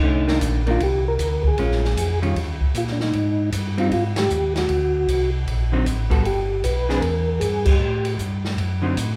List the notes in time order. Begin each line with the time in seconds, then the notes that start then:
Already playing: D#4
0.02 C2 D3 A3 C#4
0.27 D#3 A#3 D4, snare
0.41 A#1, kick, hi-hat pedal, ride
0.67 D#3 A#3 D4 F4, ride
0.80 C2 G4, kick, ride
1.08 A#4
1.19 D2, kick, hi-hat pedal, ride
1.44 G#4, kick
1.58 A#1 G#3 C#4 F4, ride
1.72 snare
1.84 snare
1.97 F2, kick, hi-hat pedal, ride
2.22 D#3 G3 C#4 F4, ride
2.35 D#2, kick, ride
2.60 D#2, kick
2.74 A#2 F4, kick, hi-hat pedal, ride
2.87 snare
2.92 D4
3.00 D#4, snare
3.13 G#2, kick, ride
3.52 G2, kick, hi-hat pedal, ride
3.78 G3 C4 D#4 F4, ride
3.89 G#2 D#4, kick, ride
3.93 F4
4.16 G4, snare, ride
4.30 D#2, hi-hat pedal
4.56 F#4, snare, ride
4.69 D2, kick, ride
5.08 C2, kick, hi-hat pedal, ride
5.47 A#1, kick, ride
5.72 D3 F#3 C4 D#4
5.86 A1, kick, hi-hat pedal, ride
6.10 G3 B3 F#4 A4, kick, ride
6.25 G1 G4, ride
6.63 B1 B4, kick, hi-hat pedal, ride
6.89 E3 C4 D4 G#4, snare
7.01 E2 A#4, kick, ride
7.40 G2 G#4, kick, hi-hat pedal, ride
7.65 G4, kick, crash
7.80 A2
8.05 ride
8.18 G2, kick, hi-hat pedal
8.45 snare
8.58 F#2, kick, ride
8.82 D3 F#3 C4 D#4
8.96 A2, kick, hi-hat pedal, ride